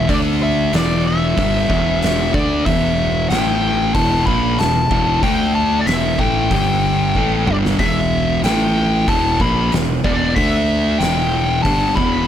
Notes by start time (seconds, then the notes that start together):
0.09 D2 D3 A3 D4 D5, kick, open hi-hat
0.43 E5
0.73 E1 E2 B2 E3 D5, snare, open hi-hat
1.07 E5
1.37 G1 G2 D3 G3, kick, open hi-hat
1.69 E1 E2 B2 E3, kick
2.02 snare, open hi-hat
2.34 D2 D3 A3 D4 D5, kick
2.66 E1 E2 B2 E3 E5, kick, open hi-hat
3.30 A1 A2 E3 A3 G5, snare, open hi-hat
3.95 E1 E2 B2 E3 A5, kick, open hi-hat
4.26 A#1 A#2 F3 A#3 B5, kick
4.59 E1 E2 B2 A5, snare, open hi-hat
4.91 E1 E2 B2 E3, kick
5.22 D2 D3 A3 D4 G5, kick, open hi-hat
5.55 A5
5.79 D5
5.86 E1 E2 B2 E3 E5, snare, open hi-hat
6.19 A1 A2 E3 A3 G5, kick
6.51 G1 G2 D3 G3, kick, open hi-hat
7.15 A1 A2 E3 A3, kick
7.47 G1 G2 D3 G3 D5, mid tom
7.66 snare
7.79 E1 E2 B2 E3 E5, kick, open hi-hat
8.43 A1 A2 E3 A3 G5, snare, open hi-hat
9.08 E1 E2 B2 E3 A5, kick, open hi-hat
9.40 A#1 A#2 F3 A#3 B5, kick
9.72 E1 E2 B2, snare, open hi-hat
10.04 E1 E2 B2 E3 D5, kick
10.36 D2 D3 A3 D4 E5, kick, open hi-hat
10.98 E1 E2 B2 E3 G5, open hi-hat
11.03 snare
11.63 G1 G2 D3 G3 A5, kick, open hi-hat
11.96 E1 E2 B2 E3 B5, kick